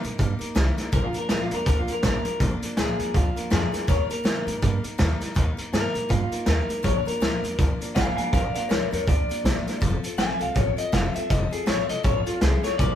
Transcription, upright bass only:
0.04 A#2
0.19 G2
0.40 muted upright bass stroke
0.56 C2
0.93 A#1
1.16 muted upright bass stroke
1.30 D2
1.51 F2
1.66 D2
1.88 muted upright bass stroke
2.03 A#1
2.25 muted upright bass stroke
2.40 A#1
2.78 D2
3.00 F2
3.14 D2
3.38 muted upright bass stroke
3.52 F2
3.74 muted upright bass stroke
3.88 D#2
4.10 muted upright bass stroke
4.25 G2
4.47 A#2
4.62 G2
4.84 muted upright bass stroke
4.99 D#2
5.21 muted upright bass stroke
5.36 D#2
5.58 muted upright bass stroke
5.73 G2
5.94 A#2
6.10 G2
6.31 muted upright bass stroke
6.47 D#2
6.68 muted upright bass stroke
6.84 A#1
7.07 muted upright bass stroke
7.21 D2
7.43 F2
7.59 D2
7.80 muted upright bass stroke
7.96 A#1
8.18 muted upright bass stroke
8.33 A#1
8.55 muted upright bass stroke
8.70 D2
8.93 F2
9.08 D2
9.29 muted upright bass stroke
9.44 A#1
9.66 muted upright bass stroke
9.82 F1
10.18 A1
10.41 C2
10.56 A1
10.78 muted upright bass stroke
10.93 F1
11.15 muted upright bass stroke
11.30 F1
11.53 muted upright bass stroke
11.68 A1
11.90 C2
12.05 A1
12.27 muted upright bass stroke
12.42 C2
12.79 A#1

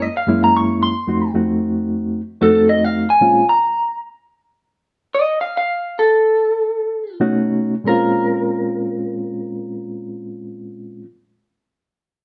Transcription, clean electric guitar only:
0.02 D#5
0.17 F5
0.44 A#5
0.57 C#6
0.83 C6
2.43 A4
2.69 D#5
2.85 F5
3.10 G#5
3.49 A#5
5.15 D#5
5.41 F5
5.57 F5
5.99 A4
7.88 A#4

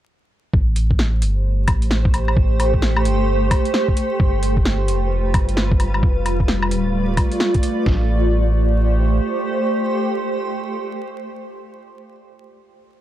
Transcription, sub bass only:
0.53 A1
1.22 G1
1.68 A1
2.36 A1
3.05 G1
4.20 G1
4.88 F1
5.34 G1
6.03 F1
6.71 D1
7.86 A1

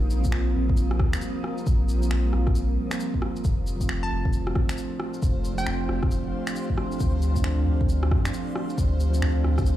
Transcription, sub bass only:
Already playing: A#1
0.33 A#1
0.56 A#1
1.00 D#2
1.67 A#1
2.11 A#1
2.33 A#1
3.45 F1
3.90 F1
4.11 F1
4.56 A1
5.23 F1
5.67 F1
5.88 F1
7.01 D2
7.44 D2
7.67 D2
8.11 G2
8.78 D2
9.22 D2
9.44 D2

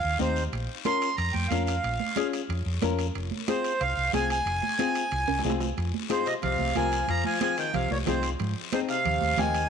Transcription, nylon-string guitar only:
0.19 C4 D#4 G4
0.85 C#4 F4 A#4
1.51 C#4 F4 A#4
2.17 C#4 F4 G#4
2.82 C#4 F4 A#4
3.48 C4 F4 G#4
4.13 C4 F4 G#4
4.79 C4 F4 G#4
5.45 C4 F4 G#4
6.09 C4 F4 G#4
6.76 C4 F4 A#4
7.41 C4 F4 G#4
8.06 C4 F4 G#4
8.73 C4 D#4 G#4
9.38 C4 D#4 G4

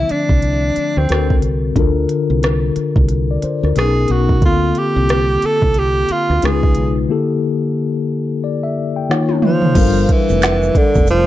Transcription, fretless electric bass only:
0.11 muted fretless electric bass stroke
0.30 C2
0.77 muted fretless electric bass stroke
0.97 D2
1.10 D2
1.44 C2
1.76 D2
2.30 C2
2.76 muted fretless electric bass stroke
2.96 C2
3.43 muted fretless electric bass stroke
3.63 D2
3.76 B1
4.10 B1
4.43 D2
4.96 C2
5.43 muted fretless electric bass stroke
5.63 C2
6.10 muted fretless electric bass stroke
6.30 D2
6.43 C#2
6.76 B1
9.76 G1
10.30 F1
10.76 muted fretless electric bass stroke
10.96 F1

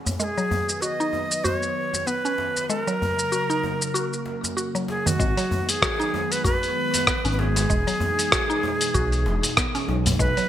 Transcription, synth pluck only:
Already playing: C#4
0.20 G#3
0.38 F#3
0.82 F#4
1.00 D#4
1.44 F#4
2.07 B3
2.25 C#4
2.70 G#3
2.87 F#3
3.32 F#4
3.50 D#4
3.94 F#4
4.57 F#4
4.75 F#3
5.06 D#3
5.19 G#3
5.37 F#3
5.82 F#4
6.00 D#4
6.44 F#4
7.07 B3
7.25 C#4
7.70 G#3
7.87 F#3
8.32 F#4
8.50 D#4
8.94 F#4
9.57 B3
9.75 C#4
10.19 G#3
10.37 F#3

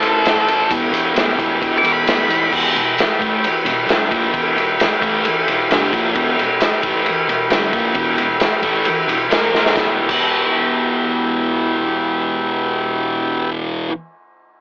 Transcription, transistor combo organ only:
Already playing: E4 A4 C5
0.69 E4 G4 B4
2.51 E4 G4 B4
6.14 E4 G4 B4
9.31 A#3 F4 A#4
9.74 B3 E4 G4

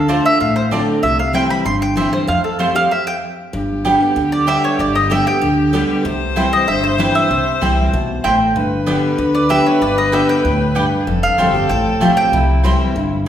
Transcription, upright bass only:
Already playing: D2
0.40 A1
1.03 C2
1.65 G1
2.28 F2
3.54 G1
4.16 D2
4.79 G1
5.42 D2
6.05 C2
6.68 G1
7.30 C2
7.62 C2
7.93 B1
8.25 A1
8.56 G1
9.18 D2
9.82 G1
10.44 D2
11.07 F1
11.38 G1
11.69 A1
12.00 B1
12.32 C2
12.95 G1

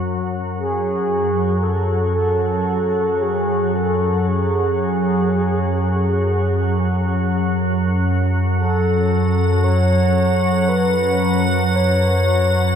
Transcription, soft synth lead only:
0.58 G#4
1.63 A4
2.13 A4
3.22 G#4
3.73 A4
4.28 G#4
8.56 A4
9.64 C#5
10.68 B4
11.76 C#5

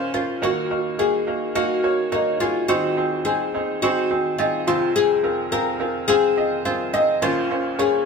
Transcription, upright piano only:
Already playing: A#1 A#2 C#4 F4 A#4 C5 D#5
0.14 C#4 F4 A#4 C5
0.42 D#2 D#3 A#3 D#4 F#4 A#4
0.71 A#3 D#4 F#4 A#4
0.99 A#3 D#4 F#4 G#4
1.27 A#3 D#4 F#4 A#4
1.55 A#3 D#4 F#4 A#4
1.84 A#3 D#4 F#4 C#5
2.12 A#3 D#4 F#4 A#4
2.41 A#3 D#4 F#4 G#4
2.69 D#2 D#3 C4 D#4 G#4 C5
2.97 C4 D#4 G#4 C5
3.26 C4 D#4 G#4 C5
3.54 C4 D#4 G#4 C5
3.83 C4 D#4 G#4 C5
4.11 C4 D#4 G#4 C5
4.39 C4 D#4 G#4 D#5
4.67 F1 F2 C4 F4 G#4 C5
5.23 C4 F4 G#4 A#4
5.52 C4 F4 G#4 A#4
5.80 C4 F4 G#4 A#4
6.09 C4 F4 G#4 C5
6.37 C4 F4 G#4 D#5
6.65 C4 F4 G#4 C5
6.93 C4 F4 G#4 D#5
7.22 A#1 A#2 C#4 F4 A#4 C5
7.51 C#4 F4 A#4 C5
7.78 C#4 F4 A#4 C#5

